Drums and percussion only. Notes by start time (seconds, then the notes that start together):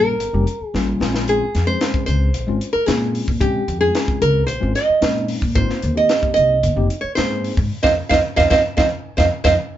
0.20 closed hi-hat
0.47 closed hi-hat
0.75 snare
1.01 snare
1.14 snare
1.28 closed hi-hat
1.55 snare, closed hi-hat
1.81 snare, closed hi-hat
1.94 kick
2.08 closed hi-hat
2.34 closed hi-hat
2.61 closed hi-hat
2.88 snare, closed hi-hat
3.15 open hi-hat
3.28 kick
3.41 kick, closed hi-hat
3.68 closed hi-hat
3.95 snare, closed hi-hat
4.08 kick
4.22 closed hi-hat
4.48 closed hi-hat
4.75 snare, closed hi-hat
5.02 snare, closed hi-hat
5.28 open hi-hat
5.42 kick
5.56 kick, closed hi-hat
5.69 snare
5.82 closed hi-hat
6.09 snare, closed hi-hat
6.23 kick
6.36 closed hi-hat
6.63 closed hi-hat
6.90 closed hi-hat
7.17 snare, closed hi-hat
7.44 open hi-hat
7.57 kick
7.84 kick, snare
8.11 kick, snare
8.38 kick, snare
8.51 kick, snare
8.78 kick, snare
9.18 kick, snare
9.45 kick, snare